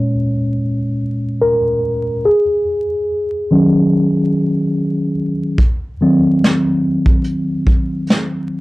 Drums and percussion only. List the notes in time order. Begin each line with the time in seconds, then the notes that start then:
5.58 kick, closed hi-hat
6.44 snare
7.06 kick
7.24 closed hi-hat
7.67 kick
8.07 snare, closed hi-hat